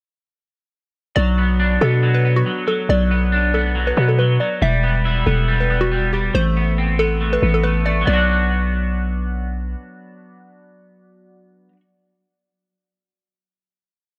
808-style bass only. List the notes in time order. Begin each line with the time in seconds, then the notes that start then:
1.17 B1
1.81 B2
2.89 B1
3.97 B2
4.62 E1
5.27 E1
6.35 A1
7.42 A1
8.07 B1